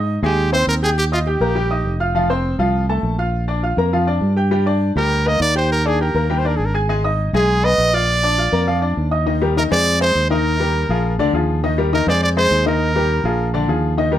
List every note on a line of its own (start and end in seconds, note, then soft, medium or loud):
0.00 0.17 G#2 medium
0.00 0.18 D#4 medium
0.00 0.18 D#5 medium
0.00 0.18 D#6 medium
0.23 0.64 D#2 medium
0.23 0.47 G#3 medium
0.23 0.51 G4 medium
0.23 0.48 G#4 medium
0.23 0.48 G#5 medium
0.52 0.77 C4 medium
0.52 0.77 C5 medium
0.52 0.67 C5 loud
0.52 0.77 C6 medium
0.67 1.35 D#2 medium
0.67 0.75 A#4 loud
0.82 1.06 G4 medium
0.82 0.90 G#4 medium
0.82 1.07 G5 medium
0.82 1.07 G6 medium
0.98 1.05 G4 medium
1.12 1.24 D#4 medium
1.12 1.20 F4 medium
1.12 1.24 D#5 medium
1.12 1.24 D#6 medium
1.27 1.39 G4 medium
1.27 1.97 G4 medium
1.27 1.39 G5 medium
1.27 1.39 G6 medium
1.40 1.82 A#1 medium
1.40 1.53 A#3 medium
1.40 1.53 A#4 medium
1.40 1.53 A#5 medium
1.55 1.68 G3 medium
1.55 1.68 G4 medium
1.55 1.68 G5 medium
1.71 1.95 D#4 medium
1.71 1.95 D#5 medium
1.71 1.95 D#6 medium
1.85 2.54 F1 medium
2.00 2.12 F4 medium
2.00 2.12 F5 medium
2.00 2.13 F6 medium
2.15 2.27 F3 medium
2.15 2.27 F4 medium
2.15 2.27 F5 medium
2.30 2.54 C4 medium
2.30 2.54 C5 medium
2.30 2.54 C6 medium
2.59 3.00 C2 medium
2.59 2.83 F3 medium
2.59 2.84 F4 medium
2.59 2.84 F5 medium
2.89 3.13 A3 medium
2.89 3.13 A4 medium
2.89 3.14 A5 medium
3.03 3.72 A#1 medium
3.18 3.43 F4 medium
3.18 3.43 F5 medium
3.18 3.43 F6 medium
3.48 3.60 D4 medium
3.48 3.60 D5 medium
3.48 3.61 D6 medium
3.63 3.75 F4 medium
3.63 3.75 F5 medium
3.63 3.76 F6 medium
3.77 4.19 F2 medium
3.77 3.90 A#3 medium
3.77 3.90 A#4 medium
3.77 3.90 A#5 medium
3.93 4.05 F3 medium
3.93 4.05 F4 medium
3.93 4.05 F5 medium
4.07 4.31 D4 medium
4.07 4.32 D5 medium
4.07 4.32 D6 medium
4.21 4.90 G2 medium
4.37 4.49 G4 medium
4.37 4.49 G5 medium
4.37 4.49 G6 medium
4.51 4.64 G3 medium
4.51 4.64 G4 medium
4.51 4.64 G5 medium
4.66 4.91 D4 medium
4.66 4.91 D5 medium
4.66 4.91 D6 medium
4.96 5.37 D2 medium
4.96 5.21 G3 medium
4.96 5.21 G4 medium
4.96 5.29 A#4 loud
4.96 5.21 G5 medium
5.26 5.50 A#3 medium
5.26 5.50 A#4 medium
5.26 5.41 D#5 medium
5.26 5.50 A#5 medium
5.40 6.09 D#2 medium
5.40 5.55 D5 loud
5.55 5.80 G4 medium
5.55 5.70 C5 medium
5.55 5.80 G5 medium
5.55 5.80 G6 medium
5.72 5.88 A#4 medium
5.86 5.98 D4 medium
5.86 6.01 G#4 medium
5.86 5.98 D5 medium
5.86 5.98 D6 medium
6.01 6.12 G4 medium
6.01 6.40 A#4 medium
6.01 6.13 G5 medium
6.01 6.13 G6 medium
6.14 6.56 D#2 medium
6.14 6.27 A#3 medium
6.14 6.27 A#4 medium
6.14 6.27 A#5 medium
6.30 6.42 G3 medium
6.30 6.42 G4 medium
6.30 6.42 G5 medium
6.38 6.49 C5 medium
6.45 6.69 D4 medium
6.45 6.58 A#4 medium
6.45 6.69 D5 medium
6.45 6.69 D6 medium
6.56 7.28 G#1 medium
6.56 6.67 G#4 medium
6.65 6.74 A#4 medium
6.74 6.86 G#4 medium
6.74 6.86 G#5 medium
6.74 6.87 G#6 medium
6.89 7.01 G#3 medium
6.89 7.01 G#4 medium
6.89 7.02 G#5 medium
7.04 7.28 D#4 medium
7.04 7.29 D#5 medium
7.04 7.29 D#6 medium
7.33 7.75 B1 loud
7.33 7.58 G#3 medium
7.33 7.58 G#4 medium
7.33 7.66 G#4 medium
7.33 7.59 G#5 medium
7.63 7.88 B3 medium
7.63 7.88 B4 medium
7.63 7.96 D#5 loud
7.63 7.88 B5 medium
7.78 8.47 A#1 loud
7.93 8.18 F4 medium
7.93 8.97 D5 loud
7.93 8.18 F5 medium
7.93 8.18 F6 medium
8.23 8.35 D4 medium
8.23 8.35 D5 medium
8.23 8.36 D6 medium
8.38 8.50 F4 medium
8.38 8.50 F5 medium
8.38 8.50 F6 medium
8.52 8.94 F2 medium
8.52 8.65 A#3 medium
8.52 8.65 A#4 medium
8.52 8.65 A#5 medium
8.67 8.79 F3 medium
8.67 8.79 F4 medium
8.67 8.80 F5 medium
8.82 9.06 D4 medium
8.82 9.06 D5 medium
8.82 9.07 D6 medium
8.97 9.66 D#2 medium
9.11 9.24 D#4 medium
9.11 9.24 D#5 medium
9.11 9.24 D#6 medium
9.26 9.38 D#3 medium
9.26 9.39 D#4 medium
9.26 9.39 D#5 medium
9.42 9.54 G3 medium
9.42 9.54 G4 medium
9.42 9.54 A#4 medium
9.57 9.69 D#3 medium
9.57 9.69 D#4 medium
9.57 9.64 A#4 medium
9.57 9.69 D#5 medium
9.71 10.13 F2 loud
9.71 9.95 G#3 medium
9.71 9.96 G#4 medium
9.71 9.96 C5 medium
9.71 9.99 D5 loud
10.00 10.25 G#3 medium
10.00 10.25 G#4 medium
10.00 10.25 C5 medium
10.00 10.29 C5 medium
10.15 10.84 D#2 medium
10.30 10.55 D#3 medium
10.30 10.55 D#4 medium
10.30 11.15 A#4 medium
10.30 10.55 D#5 medium
10.60 10.84 G3 medium
10.60 10.84 G4 medium
10.60 10.84 A#4 medium
10.89 11.17 A#1 medium
10.89 11.14 F3 medium
10.89 11.14 F4 medium
10.89 11.14 G#4 medium
11.19 11.32 D2 medium
11.19 11.31 D3 medium
11.19 11.31 D4 medium
11.19 11.31 D5 medium
11.33 12.02 D#2 medium
11.33 11.58 F3 medium
11.33 11.58 F4 medium
11.33 11.58 G#4 medium
11.63 11.75 D#3 medium
11.63 11.75 D#4 medium
11.63 11.76 D#5 medium
11.78 11.90 G3 medium
11.78 11.90 G4 medium
11.78 11.90 A#4 medium
11.93 12.05 D#3 medium
11.93 12.05 D#4 medium
11.93 12.07 A#4 medium
11.93 12.05 D#5 medium
12.07 12.48 F2 medium
12.07 12.32 G#3 medium
12.07 12.32 G#4 medium
12.07 12.32 C5 medium
12.07 12.22 D5 medium
12.23 12.29 D5 loud
12.37 12.61 G#3 medium
12.37 12.61 G#4 medium
12.37 12.61 C5 medium
12.37 12.64 C5 loud
12.51 13.19 D#2 medium
12.66 12.90 D#3 medium
12.66 12.90 D#4 medium
12.66 13.50 A#4 medium
12.66 12.90 D#5 medium
12.96 13.19 G3 medium
12.96 13.20 G4 medium
12.96 13.20 A#4 medium
13.24 13.65 A#1 medium
13.24 13.49 F3 medium
13.24 13.49 F4 medium
13.24 13.49 G#4 medium
13.54 13.66 D3 medium
13.54 13.66 D4 medium
13.54 13.66 D5 medium
13.68 14.19 D#2 medium
13.68 13.92 F3 medium
13.68 13.93 F4 medium
13.68 13.93 G#4 medium
13.97 14.09 D#3 medium
13.97 14.10 D#4 medium
13.97 14.10 D#5 medium
14.12 14.19 G3 medium
14.12 14.19 G4 medium
14.12 14.19 A#4 medium